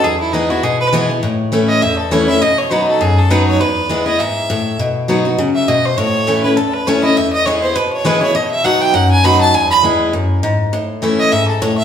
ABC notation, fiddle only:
X:1
M:4/4
L:1/8
Q:"Swing" 1/4=202
K:E
V:1 name="Fiddle"
G E D F G B z2 | z3 d e A c e | d c B A G A B c | B3 d e4 |
z4 z e d =c | c3 B A B c d | e d c =c B ^c B c | d e f =g f ^g b a |
g b z6 | z3 d e A c e |]